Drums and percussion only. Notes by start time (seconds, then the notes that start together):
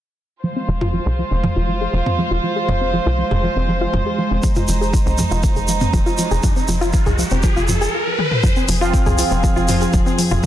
0.81 mid tom
1.44 mid tom
2.06 mid tom
2.69 mid tom
3.31 mid tom
3.94 mid tom
4.43 kick, shaker
4.55 mid tom, shaker
4.68 shaker
4.82 shaker
4.93 kick, shaker
5.07 shaker
5.18 mid tom, shaker
5.31 shaker
5.43 kick, shaker
5.56 shaker
5.68 shaker
5.81 mid tom, shaker
5.93 kick, shaker
6.07 shaker
6.18 shaker
6.31 shaker
6.43 kick, mid tom, shaker
6.56 shaker
6.68 shaker
6.81 shaker
6.93 kick, shaker
7.06 mid tom, shaker
7.19 shaker
7.30 shaker
7.43 kick, shaker
7.57 shaker
7.68 mid tom, shaker
7.82 shaker
8.19 high tom
8.31 mid tom
8.44 kick, mid tom, shaker
8.56 shaker
8.69 open hi-hat, shaker
8.82 shaker
8.94 kick, shaker
9.06 mid tom, shaker
9.18 open hi-hat, shaker
9.31 shaker
9.44 kick, shaker
9.57 shaker
9.68 mid tom, open hi-hat, shaker
9.81 shaker
9.93 kick, shaker
10.06 shaker
10.19 open hi-hat, shaker
10.31 mid tom, shaker